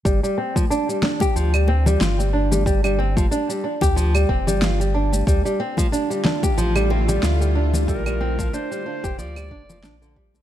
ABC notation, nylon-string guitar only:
X:1
M:4/4
L:1/16
Q:"Swing 16ths" 1/4=92
K:Gdor
V:1 name="Nylon-string guitar" clef=bass
G, G, C F, D G, D G F, G, C G, F G, D G, | G, G, C F, D G, D G F, G, C G, F G, D G, | G, G, C F, D G, D G F, G, C G, F G, D G, | G, G, C F, D G, D G F, G, D F, D D, G, D, |]